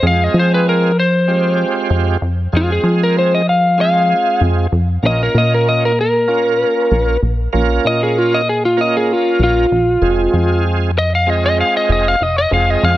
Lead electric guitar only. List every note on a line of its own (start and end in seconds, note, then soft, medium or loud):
0.07 0.24 F5 medium
0.24 0.36 D#5 medium
0.39 0.53 C5 medium
0.54 0.67 B4 medium
0.69 0.98 A#4 medium
0.99 2.19 C5 medium
2.57 2.71 F4 medium
2.72 3.01 G#4 medium
3.03 3.17 A#4 medium
3.18 3.33 C5 medium
3.35 3.48 D#5 medium
3.49 3.78 F5 medium
3.81 4.40 F5 medium
5.06 5.21 D#5 loud
5.23 5.36 A#4 medium
5.38 5.52 D#5 loud
5.54 5.67 A#4 medium
5.69 5.83 D#5 medium
5.85 5.98 A#4 medium
6.01 7.20 A#4 medium
7.87 8.01 D#5 loud
8.03 8.18 G#4 medium
8.18 8.33 F4 medium
8.34 8.47 D#5 loud
8.49 8.64 G#4 medium
8.65 8.78 F4 medium
8.81 8.95 D#5 medium
8.97 9.13 G#4 medium
9.13 9.41 F4 loud
9.43 10.63 F4 loud
10.98 11.13 D#5 medium
11.15 11.30 F5 medium
11.30 11.44 D#5 medium
11.46 11.59 D#5 loud
11.61 11.75 F5 medium
11.77 11.90 D#5 loud
11.92 12.08 D#5 medium
12.08 12.23 F5 medium
12.23 12.37 D#5 medium
12.38 12.52 D#5 medium
12.53 12.70 F5 medium
12.70 12.84 D#5 medium
12.84 12.97 F5 medium